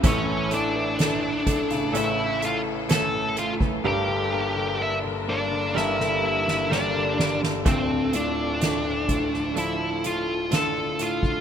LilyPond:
<<
  \new Staff \with { instrumentName = "Lead electric guitar" } { \time 4/4 \key d \minor \tempo 4 = 63 <cis' cis''>8 <d' d''>4. <e' e''>8 <f' f''>8 <a' a''>8 <f' f''>8 | <g' g''>4 <e' e''>8 <d' d''>8 <e' e''>4 <d' d''>8. r16 | c'8 d'4. e'8 f'8 a'8 f'8 | }
  \new Staff \with { instrumentName = "Clean electric guitar" } { \time 4/4 \key d \minor <a, e a cis' e' a'>8 <a e' a'>4. <a cis' a'>4 <a cis' a'>4 | <g d' g' bes'>8 <d' g' bes'>4. <g d' g' bes'>4 <g d' g' bes'>4 | <d a d' f' a'>8 <d' f' a'>4. <a d' a'>4 <a d' f' a'>4 | }
  \new Staff \with { instrumentName = "String section" } { \clef bass \time 4/4 \key d \minor <a, a a'>1 | <g, g d' bes'>1 | <d, d f a'>1 | }
  \new Staff \with { instrumentName = "Grand piano" } { \clef bass \time 4/4 \key d \minor <a,, a,>16 e16 a16 e16 a8 a16 cis16 <a,, a,>8 a8 a8 a16 e16 | <g,, g,>16 d16 bes16 d16 bes16 d16 bes16 d16 <g,, g,>16 d16 bes16 d16 bes16 d16 bes16 d16 | <d,, d,>8 a,8 a8 a,8 f8 a,8 d8 a,8 | }
  \new DrumStaff \with { instrumentName = "Drums" } \drummode { \time 4/4 <hh bd>8 hh8 <hh sn>8 <hh bd>16 <hh sn>16 hh8 hh8 <hh sn>8 hh16 bd16 | r4 r4 sn16 sn8 sn16 sn8 sn16 sn16 | <hh bd>8 hh8 <hh sn>8 <hh bd>16 sn16 hh8 hh8 <hh sn>8 hh16 bd16 | }
>>